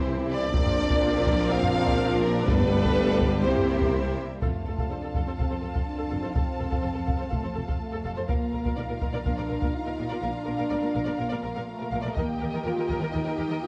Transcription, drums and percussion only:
0.54 taiko loud
0.66 taiko low medium
0.90 taiko medium
1.27 taiko medium
1.63 taiko low medium
1.87 taiko medium
2.48 taiko loud
2.60 taiko low medium
2.85 taiko medium
3.21 taiko medium
3.57 taiko low soft
3.81 taiko medium
4.42 taiko medium
4.78 taiko medium
5.15 taiko medium
5.39 taiko medium
5.76 taiko medium
6.36 taiko medium
6.72 taiko medium
7.08 taiko medium
7.32 taiko medium
7.69 taiko medium
8.29 taiko medium
8.65 taiko medium
9.02 taiko medium
9.26 taiko medium
9.62 taiko medium
12.17 taiko medium
12.89 taiko soft

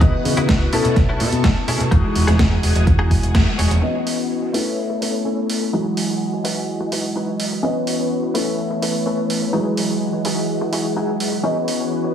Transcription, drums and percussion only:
0.01 kick loud
0.01 closed hi-hat medium
0.25 open hi-hat loud
0.37 closed hi-hat medium
0.49 kick loud
0.49 snare loud
0.49 closed hi-hat medium
0.73 open hi-hat loud
0.85 closed hi-hat medium
0.96 kick loud
0.96 snare soft
0.96 closed hi-hat medium
1.20 open hi-hat loud
1.32 closed hi-hat medium
1.44 kick loud
1.44 snare loud
1.44 closed hi-hat medium
1.68 open hi-hat loud
1.80 closed hi-hat medium
1.92 kick loud
1.92 closed hi-hat medium
2.16 open hi-hat loud
2.28 snare soft
2.28 closed hi-hat medium
2.39 kick loud
2.39 snare loud
2.39 closed hi-hat medium
2.63 open hi-hat loud
2.76 closed hi-hat medium
2.87 kick loud
2.87 closed hi-hat medium
3.11 kick medium
3.11 open hi-hat loud
3.23 closed hi-hat medium
3.35 kick loud
3.35 snare loud
3.35 closed hi-hat medium
3.59 open hi-hat loud
3.71 closed hi-hat medium
4.07 open hi-hat loud
4.54 open hi-hat medium
5.02 open hi-hat loud
5.50 open hi-hat loud
5.97 open hi-hat loud
6.45 open hi-hat medium
6.92 open hi-hat loud
7.40 open hi-hat loud
7.87 open hi-hat loud
8.35 open hi-hat loud
8.82 open hi-hat loud
9.30 open hi-hat loud
9.77 open hi-hat loud
10.25 open hi-hat loud
10.73 open hi-hat loud
11.20 open hi-hat loud
11.68 open hi-hat loud

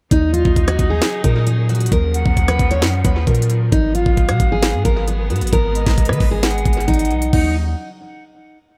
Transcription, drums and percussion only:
0.11 kick loud
0.11 closed hi-hat medium
0.34 closed hi-hat medium
0.45 kick loud
0.56 kick medium
0.56 closed hi-hat medium
0.68 cross-stick loud
0.68 closed hi-hat medium
0.79 kick medium
0.79 closed hi-hat medium
1.02 snare loud
1.02 closed hi-hat medium
1.24 kick loud
1.24 closed hi-hat medium
1.47 closed hi-hat medium
1.69 closed hi-hat soft
1.75 closed hi-hat medium
1.80 closed hi-hat medium
1.86 closed hi-hat medium
1.92 kick loud
1.92 closed hi-hat medium
2.14 closed hi-hat medium
2.26 kick medium
2.37 kick medium
2.37 closed hi-hat medium
2.48 cross-stick loud
2.48 closed hi-hat medium
2.59 kick loud
2.59 closed hi-hat medium
2.71 closed hi-hat medium
2.82 snare loud
2.82 closed hi-hat medium
3.05 kick loud
3.05 closed hi-hat medium
3.27 kick medium
3.27 closed hi-hat soft
3.35 closed hi-hat medium
3.42 closed hi-hat medium
3.50 closed hi-hat medium
3.72 kick loud
3.72 closed hi-hat medium
3.95 closed hi-hat medium
4.06 kick medium
4.17 kick medium
4.17 closed hi-hat medium
4.29 cross-stick loud
4.29 closed hi-hat medium
4.40 kick loud
4.40 closed hi-hat medium
4.62 snare loud
4.62 closed hi-hat medium
4.85 kick loud
4.85 closed hi-hat medium
5.08 closed hi-hat medium
5.30 closed hi-hat soft
5.36 closed hi-hat medium
5.41 closed hi-hat medium
5.47 closed hi-hat medium
5.53 kick loud
5.53 closed hi-hat medium
5.75 closed hi-hat medium
5.86 kick loud
5.86 snare medium
5.98 kick loud
5.98 closed hi-hat medium
6.05 cross-stick loud
6.05 closed hi-hat medium
6.13 closed hi-hat medium
6.20 kick loud
6.20 open hi-hat medium
6.43 snare loud
6.43 closed hi-hat medium
6.50 closed hi-hat medium
6.58 closed hi-hat medium
6.65 kick loud
6.65 closed hi-hat medium
6.73 closed hi-hat medium
6.80 closed hi-hat medium
6.88 kick medium
6.88 closed hi-hat medium
6.94 closed hi-hat medium
6.99 closed hi-hat medium
7.05 closed hi-hat medium
7.11 closed hi-hat soft
7.22 closed hi-hat medium
7.33 kick loud
7.33 crash medium

